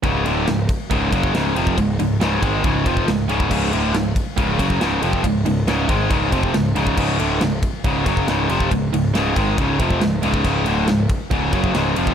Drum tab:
CC |----------------|----------------|x---------------|----------------|
RD |x-x-x-x-x-x-x-x-|x-x-x-x-x-x-x-x-|--x-x-x-x-x-x-x-|x-x-x-x-x-x-x-x-|
SD |----o-------o---|----o-------o---|----o-------o---|----o-------o---|
BD |o-----o-o-oo---o|o-----o-o-oo---o|o-----o-o-oo---o|o-----o-o-oo---o|

CC |x---------------|----------------|x---------------|
RD |--x-x-x-x-x-x-x-|x-x-x-x-x-x-x-x-|--x-x-x-x-x-x-x-|
SD |----o-------o---|----o-------o---|----o-------o---|
BD |o-----o-o-oo---o|o-----o-o-oo---o|o-----o-o-oo---o|